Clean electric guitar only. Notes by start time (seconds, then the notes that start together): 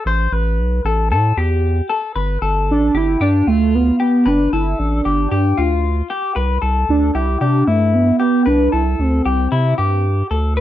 0.07 C5
0.33 B4
0.86 A4
1.12 A4
1.38 G4
1.89 A4
2.16 B4
2.42 A4
2.95 G4
3.21 G4
3.47 F4
4.00 G4
4.26 B4
4.53 A4
5.05 G4
5.32 G4
5.58 F4
6.10 G4
6.36 B4
6.62 A4
7.15 G4
7.41 G4
7.67 E4
8.20 G4
8.46 B4
8.72 A4
9.25 G4
9.52 E4
9.78 G4
10.31 A4
10.57 B4